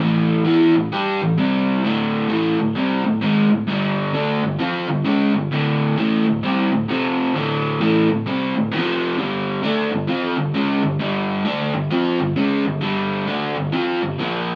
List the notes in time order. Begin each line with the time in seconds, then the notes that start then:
0.00 A2 E3 A3
0.45 E3 B3 E4
0.74 A2 E3
0.92 G3 D4 G4
1.22 A2 E3
1.38 C3 G3 C4
1.83 D2 A2 D3
2.29 A2 E3 A3
2.59 D2 A2
2.75 C3 G3 C4
3.05 D2 A2
3.21 G#2 D#3 G#3
3.50 D2 A2
3.67 G2 D3 G3
4.14 D3 A3 D4
4.43 G2 D3
4.59 F3 C4 F4
4.88 G2 D3
5.05 C#3 G#3 C#4
5.34 G2 D3
5.51 D2 A2 D3
5.97 A2 E3 A3
6.26 D2 A2
6.43 C3 G3 C4
6.72 D2 A2
6.88 F2 C3 F3
7.35 D2 A2 D3
7.80 A2 E3 A3
8.10 D2 A2
8.26 C3 G3 C4
8.56 D2 A2
8.71 F2 C3 F3
9.17 G2 D3 G3
9.63 D3 A3 D4
9.92 G2 D3
10.08 F3 C4 F4
10.37 G2 D3
10.55 C#3 G#3 C#4
10.83 G2 D3
10.99 G2 D3 G3
11.45 D3 A3 D4
11.74 G2 D3
11.91 F3 C4 F4
12.20 G2 D3
12.36 C#3 G#3 C#4
12.66 G2 D3
12.81 G2 D3 G3
13.27 D3 A3 D4
13.56 G2 D3
13.72 F3 C4 F4
14.01 G2 D3
14.18 A#2 F3 A#3